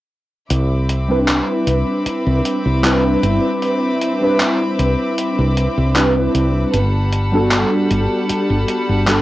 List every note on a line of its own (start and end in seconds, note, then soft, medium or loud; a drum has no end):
0.50 1.40 C2 medium
0.50 6.70 C4 medium
0.50 6.70 E5 medium
0.50 6.70 B5 medium
0.50 6.70 D6 medium
0.50 closed hi-hat medium
0.89 closed hi-hat medium
1.08 2.79 G3 medium
1.08 2.79 C4 medium
1.08 2.80 D4 medium
1.08 2.80 E4 medium
1.08 2.80 B4 medium
1.28 clap loud
1.28 closed hi-hat medium
1.67 1.82 C2 medium
1.67 closed hi-hat medium
2.06 muted fretless electric bass stroke soft
2.06 closed hi-hat medium
2.27 2.40 C2 medium
2.45 closed hi-hat medium
2.66 3.15 C2 medium
2.82 4.16 G3 medium
2.82 4.16 C4 medium
2.82 4.17 D4 medium
2.82 4.17 E4 medium
2.82 4.17 B4 medium
2.82 clap loud
2.82 closed hi-hat medium
3.23 3.38 G1 medium
3.23 closed hi-hat medium
3.62 closed hi-hat medium
4.01 closed hi-hat medium
4.20 5.91 G3 medium
4.20 5.91 C4 medium
4.20 5.92 D4 medium
4.20 5.92 E4 medium
4.20 5.92 B4 medium
4.40 clap loud
4.40 closed hi-hat medium
4.79 4.94 C2 medium
4.79 closed hi-hat medium
5.18 closed hi-hat medium
5.39 5.66 C2 medium
5.57 closed hi-hat medium
5.77 6.27 C2 medium
5.95 6.71 G3 medium
5.95 6.71 C4 medium
5.95 6.71 D4 medium
5.95 6.72 E4 medium
5.95 6.72 B4 medium
5.95 clap loud
5.95 closed hi-hat medium
6.35 6.64 C2 medium
6.35 closed hi-hat medium
6.73 7.63 G1 medium
6.73 9.22 G3 medium
6.73 9.22 F#5 medium
6.73 9.22 A5 medium
6.73 9.22 B5 medium
6.73 closed hi-hat medium
7.13 closed hi-hat medium
7.32 9.02 G3 medium
7.32 9.03 B3 medium
7.32 9.03 D4 medium
7.32 9.03 F#4 medium
7.32 9.04 A4 medium
7.52 clap loud
7.52 closed hi-hat medium
7.91 8.06 G1 medium
7.91 closed hi-hat medium
8.29 muted fretless electric bass stroke soft
8.29 closed hi-hat medium
8.50 8.63 G1 medium
8.68 closed hi-hat medium
8.89 9.22 G1 medium
9.06 9.22 G3 medium
9.06 9.22 B3 medium
9.06 9.22 D4 medium
9.06 9.22 F#4 medium
9.06 9.22 A4 medium
9.06 clap loud
9.06 closed hi-hat medium